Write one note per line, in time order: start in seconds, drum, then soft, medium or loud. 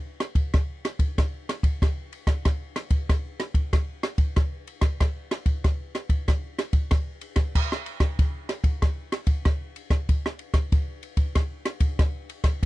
0.20 cross-stick medium
0.20 ride soft
0.35 kick medium
0.35 ride soft
0.54 kick medium
0.54 cross-stick medium
0.54 ride soft
0.85 cross-stick medium
0.85 ride soft
0.99 kick medium
0.99 ride soft
1.18 kick medium
1.18 cross-stick medium
1.18 ride soft
1.49 cross-stick medium
1.49 ride medium
1.63 kick medium
1.63 ride soft
1.82 kick medium
1.82 cross-stick medium
1.82 ride medium
2.13 ride soft
2.27 kick medium
2.27 cross-stick medium
2.27 ride soft
2.45 kick medium
2.45 cross-stick medium
2.45 ride soft
2.76 cross-stick medium
2.76 ride soft
2.90 kick medium
2.90 ride soft
3.09 kick medium
3.09 cross-stick medium
3.09 ride soft
3.40 cross-stick medium
3.40 ride soft
3.54 kick medium
3.54 ride soft
3.73 kick medium
3.73 cross-stick medium
3.73 ride soft
4.03 cross-stick medium
4.03 ride soft
4.18 kick medium
4.18 ride soft
4.36 kick medium
4.36 cross-stick medium
4.36 ride soft
4.67 ride soft
4.81 kick medium
4.81 cross-stick medium
4.81 ride soft
5.00 kick medium
5.00 cross-stick medium
5.00 ride soft
5.31 cross-stick medium
5.31 ride soft
5.46 kick medium
5.46 ride soft
5.64 kick medium
5.64 cross-stick medium
5.64 ride soft
5.95 cross-stick medium
5.95 ride soft
6.09 kick medium
6.09 ride soft
6.28 kick medium
6.28 cross-stick medium
6.28 ride soft
6.58 cross-stick medium
6.58 ride soft
6.73 kick medium
6.73 ride soft
6.91 kick medium
6.91 cross-stick medium
6.91 ride medium
7.21 ride soft
7.36 kick medium
7.36 cross-stick medium
7.36 ride soft
7.55 kick medium
7.55 crash medium
7.72 cross-stick medium
7.86 ride soft
8.00 kick medium
8.00 cross-stick medium
8.00 ride soft
8.19 kick medium
8.19 ride soft
8.49 cross-stick medium
8.49 ride soft
8.64 kick medium
8.64 ride soft
8.82 kick medium
8.82 cross-stick medium
8.82 ride soft
9.12 cross-stick medium
9.12 ride soft
9.27 kick medium
9.27 ride soft
9.45 kick medium
9.45 cross-stick medium
9.45 ride soft
9.76 ride soft
9.90 kick medium
9.90 cross-stick medium
9.90 ride soft
10.09 kick medium
10.09 ride soft
10.26 cross-stick medium
10.39 ride soft
10.54 kick medium
10.54 cross-stick medium
10.54 ride soft
10.72 kick medium
10.72 ride soft
11.03 ride soft
11.17 kick medium
11.17 ride soft
11.35 kick medium
11.35 cross-stick medium
11.35 ride medium
11.65 cross-stick medium
11.65 ride soft
11.80 kick medium
11.80 ride medium
11.99 kick medium
11.99 cross-stick medium
11.99 ride medium
12.29 ride medium
12.44 kick medium
12.44 cross-stick medium
12.44 ride soft